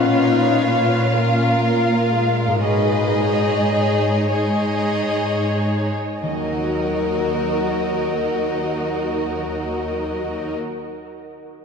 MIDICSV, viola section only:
0, 0, Header, 1, 2, 480
1, 0, Start_track
1, 0, Key_signature, -6, "minor"
1, 0, Tempo, 943396
1, 828, Tempo, 1008403
1, 1308, Tempo, 1102941
1, 1309, Time_signature, 6, 3, 24, 8
1, 1788, Tempo, 1200000
1, 2268, Tempo, 1284797
1, 2748, Tempo, 1202405
1, 3708, Tempo, 1234568
1, 4882, End_track
2, 0, Start_track
2, 0, Title_t, "Viola section"
2, 0, Program_c, 0, 48
2, 0, Note_on_c, 0, 61, 46
2, 0, Note_on_c, 0, 71, 41
2, 100, Note_on_c, 0, 63, 42
2, 103, Note_off_c, 0, 61, 0
2, 337, Note_off_c, 0, 63, 0
2, 340, Note_on_c, 0, 61, 42
2, 560, Note_off_c, 0, 71, 0
2, 582, Note_off_c, 0, 61, 0
2, 587, Note_on_c, 0, 61, 36
2, 588, Note_off_c, 0, 61, 0
2, 588, Note_on_c, 0, 61, 43
2, 831, Note_off_c, 0, 61, 0
2, 832, Note_on_c, 0, 58, 42
2, 1061, Note_off_c, 0, 58, 0
2, 1069, Note_on_c, 0, 56, 44
2, 1311, Note_on_c, 0, 63, 46
2, 2010, Note_off_c, 0, 63, 0
2, 2022, Note_off_c, 0, 56, 0
2, 2027, Note_on_c, 0, 56, 38
2, 2027, Note_on_c, 0, 63, 39
2, 2641, Note_off_c, 0, 56, 0
2, 2641, Note_off_c, 0, 63, 0
2, 2749, Note_on_c, 0, 54, 31
2, 2750, Note_on_c, 0, 63, 33
2, 4459, Note_off_c, 0, 54, 0
2, 4460, Note_off_c, 0, 63, 0
2, 4882, End_track
0, 0, End_of_file